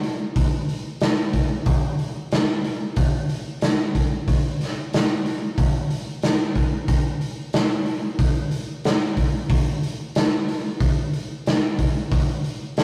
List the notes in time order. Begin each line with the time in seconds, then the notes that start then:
0.03 open hi-hat
0.36 kick, open hi-hat
0.69 open hi-hat
1.00 snare, open hi-hat
1.33 kick, open hi-hat
1.66 kick, open hi-hat
1.99 open hi-hat
2.31 snare, open hi-hat
2.64 open hi-hat
2.96 kick, open hi-hat
3.29 open hi-hat
3.61 snare, open hi-hat
3.95 kick, open hi-hat
4.28 kick, open hi-hat
4.61 snare, open hi-hat
4.93 snare, open hi-hat
5.26 open hi-hat
5.58 kick, open hi-hat
5.90 open hi-hat
6.22 snare, open hi-hat
6.55 kick, open hi-hat
6.88 kick, open hi-hat
7.21 open hi-hat
7.53 snare, open hi-hat
7.86 open hi-hat
8.19 kick, open hi-hat
8.51 open hi-hat
8.84 snare, open hi-hat
9.17 kick, open hi-hat
9.49 kick, open hi-hat
9.83 open hi-hat
10.15 snare, open hi-hat
10.48 open hi-hat
10.80 kick, open hi-hat
11.13 open hi-hat
11.46 snare, open hi-hat
11.79 kick, open hi-hat
12.12 kick, open hi-hat
12.44 open hi-hat
12.77 snare, open hi-hat